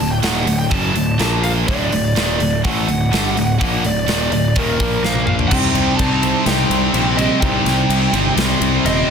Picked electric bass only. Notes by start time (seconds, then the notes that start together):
0.00 D1
0.22 D#1
0.46 D1
0.71 F#1
0.94 D1
1.18 A#1
1.68 D1
1.92 D1
2.16 D#1
2.41 D1
2.65 A1
2.89 D1
3.13 G1
3.37 D1
3.61 A#1
3.85 D1
4.08 D#1
4.32 D1
4.56 D#1
4.80 A#1
5.51 C2
5.74 C2
5.99 C2
6.46 C2
6.70 C2
6.93 A#1
7.42 C2
7.65 C2
7.89 C2
8.13 G1
8.36 C2
8.60 C2
8.85 D#1